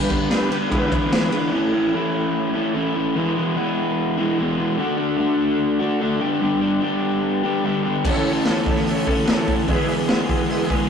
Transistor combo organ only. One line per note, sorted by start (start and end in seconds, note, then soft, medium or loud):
0.00 0.15 D4 medium
0.00 0.15 G4 medium
0.00 0.17 B4 medium
0.31 0.57 D4 medium
0.31 0.58 G4 medium
0.31 0.58 B4 loud
0.70 0.97 E4 medium
0.70 0.97 G#4 medium
0.70 0.98 B4 loud
1.12 1.38 E4 medium
1.12 1.38 G#4 medium
1.12 1.39 B4 loud
8.07 8.32 E4 loud
8.07 8.32 A4 loud
8.07 8.33 C#5 loud
8.48 8.59 E4 medium
8.48 8.60 A4 medium
8.48 8.61 C#5 loud
8.68 8.80 E4 medium
8.68 8.81 A4 medium
8.68 8.81 C#5 medium
8.89 9.14 E4 medium
8.89 9.14 A4 medium
8.89 9.15 C#5 medium
9.29 9.54 E4 medium
9.29 9.54 A4 medium
9.29 9.55 C#5 loud
9.69 9.94 E4 loud
9.69 9.95 G#4 loud
9.69 9.96 B4 loud
10.07 10.21 E4 medium
10.07 10.21 G#4 medium
10.07 10.22 B4 medium
10.27 10.41 E4 medium
10.27 10.42 G#4 medium
10.27 10.42 B4 medium
10.49 10.75 E4 loud
10.49 10.76 G#4 medium
10.49 10.76 B4 loud